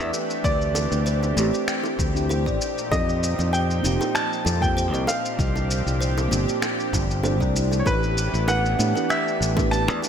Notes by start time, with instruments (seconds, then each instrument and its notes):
Already playing: analog synth pad E3 A3 B3 D4 G4, fm electric piano A3 B3 D4 E4 G4, grand piano E5
0.00 fingered electric bass E2, kalimba D5, shaker
0.13 analog synth pad C4, high bongo, shaker
0.30 shaker
0.44 fingered electric bass D2, kalimba G4, grand piano D5, kick, shaker
0.61 shaker
0.75 high bongo, shaker
0.92 fingered electric bass D2, shaker
1.06 kalimba C5, shaker
1.23 high bongo, shaker
1.33 fingered electric bass A1, fm electric piano A3 C4 D4, kalimba G4
1.38 fm electric piano E4 G4, shaker
1.54 kalimba C5, shaker
1.68 kalimba G5, finger snap, shaker
1.83 high bongo, shaker
1.99 fingered electric bass D2, kick, shaker
2.13 fm electric piano A3 C4 D4 E4 G4, shaker
2.29 kalimba C5, high bongo, shaker
2.46 fingered electric bass A1, kalimba D5, kick, shaker
2.61 analog synth pad A#2 F3 D#4, shaker
2.78 shaker
2.91 fingered electric bass F2, kalimba G4, grand piano D#5, kick, high bongo, shaker
3.09 shaker
3.23 shaker
3.39 fingered electric bass F2, high bongo, shaker
3.53 kalimba C5, grand piano G5, shaker
3.71 shaker
3.80 fingered electric bass F1, fm electric piano A#3 C4 D#4, kalimba G4
3.85 fm electric piano F4 G4, shaker
4.01 kalimba C5, high bongo, shaker
4.15 kalimba G5, grand piano A5, finger snap, shaker
4.33 shaker
4.45 fingered electric bass F2, high bongo, shaker
4.61 fm electric piano A#3 C4 D#4 F4 G4, grand piano G5, kick, shaker
4.77 kalimba C5, shaker
4.93 fingered electric bass C2, kalimba D#5, shaker
5.07 analog synth pad D4 G4, grand piano F5, high bongo, shaker
5.25 shaker
5.39 fingered electric bass C2, kalimba G4, kick, shaker
5.56 high bongo, shaker
5.71 shaker
5.86 fingered electric bass C2, shaker
6.01 kalimba C5, shaker
6.18 high bongo, shaker
6.28 fingered electric bass G1, fm electric piano A#3 C4 D4, kalimba G4
6.32 fm electric piano F4 G4, shaker
6.48 kalimba C5, shaker
6.62 kalimba G5, finger snap, high bongo, shaker
6.80 shaker
6.93 fingered electric bass G1, kick, shaker
7.11 shaker
7.23 fm electric piano A#3 C4 D4 F4 G4, kalimba C5, high bongo, shaker
7.39 fingered electric bass C2, fm electric piano A#3 C4 D4 F4 A#4, kalimba D5, kick, shaker
7.52 fm electric piano A3 D4, shaker
7.57 fm electric piano E4 G4
7.71 high bongo, shaker
7.80 grand piano C#5
7.86 fingered electric bass A1, analog synth pad E3 A3 B3 G4, kalimba G4, grand piano B4, kick, high bongo, shaker
8.03 shaker
8.18 shaker
8.34 fingered electric bass A1, shaker
8.48 kalimba B4, grand piano F#5, high bongo, shaker
8.66 shaker
8.76 fingered electric bass A2, fm electric piano A3 B3 D4, kalimba G4
8.80 fm electric piano E4 G4, shaker
8.95 kalimba B4, high bongo, shaker
9.10 grand piano E5, kalimba G5, finger snap, shaker
9.28 shaker
9.41 fingered electric bass A1, shaker
9.55 fm electric piano A3 B3 D4 E4 G4, kick, high bongo, shaker
9.71 kalimba B4, grand piano A5, shaker
9.88 fingered electric bass E2, kalimba D5, shaker
10.02 analog synth pad E3 C4, high bongo, shaker